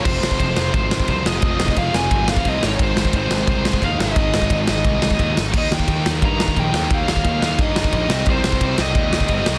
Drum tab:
CC |x---------------|----------------|----------------|----------------|
RD |----x---x---x---|x---x---x---x---|x---x---x---x---|x---x---x---x---|
SD |--o---o---o---o-|--o---o---o---o-|--o---o---o---o-|--o---o---o---o-|
BD |o--oo---o--oo---|o--oo---o--oo---|o--oo---o--oo---|o--oo---o--oo---|

CC |x---------------|----------------|----------------|
RD |----x---x---x---|x---x---x---x---|x---x---x---x---|
SD |--o---o---o---o-|--o---o---o---o-|--o---o---o---o-|
BD |o--oo---o--oo---|o--oo---o--oo---|o--oo---o--oo---|